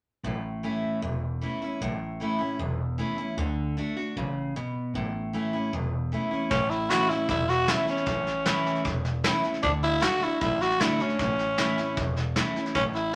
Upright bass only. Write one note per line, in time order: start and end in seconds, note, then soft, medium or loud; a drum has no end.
0.23 0.65 A1 medium
0.83 muted upright bass stroke medium
1.02 1.44 E1 medium
1.62 muted upright bass stroke medium
1.81 2.22 A1 medium
2.40 muted upright bass stroke medium
2.59 3.00 E1 medium
3.17 muted upright bass stroke medium
3.37 3.78 D2 medium
3.96 muted upright bass stroke medium
4.16 4.57 A1 medium
4.74 muted upright bass stroke medium
4.94 5.35 A1 medium
5.53 muted upright bass stroke medium
5.73 6.14 E1 medium
6.32 muted upright bass stroke medium
6.50 6.92 A1 loud
7.10 muted upright bass stroke medium
7.29 7.70 E1 medium
7.87 muted upright bass stroke medium
8.07 8.48 A1 loud
8.65 muted upright bass stroke medium
8.85 9.26 E1 medium
9.44 muted upright bass stroke medium
9.63 10.04 D2 medium
10.22 muted upright bass stroke medium
10.41 10.82 A1 medium
11.00 muted upright bass stroke medium
11.19 11.60 A1 loud
11.78 muted upright bass stroke medium
11.97 12.38 E1 loud
12.75 13.15 A1 loud